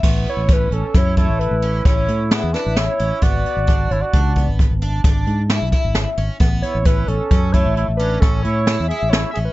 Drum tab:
CC |x-------------|--------------|--------------|
HH |-xxxxxxxxxxxxx|xxxxxxxxxxxxxx|xxxxxxxxxxxxxx|
SD |----o-----ooo-|----------o-o-|----------o-o-|
BD |o-o-oo--o-----|o-o-ooo-o--o--|o-o-oo--o-----|